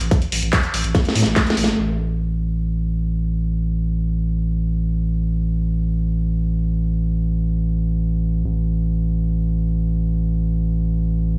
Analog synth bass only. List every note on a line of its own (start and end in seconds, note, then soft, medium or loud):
0.01 0.08 A1 medium
0.32 0.39 A1 medium
0.43 0.50 A1 medium
0.74 0.81 A1 medium
0.84 0.92 A1 medium
1.16 1.23 A2 loud
1.26 1.33 A1 medium
1.57 1.65 A1 medium
1.68 1.75 G1 medium
1.78 8.43 A1 medium
8.45 11.38 A1 medium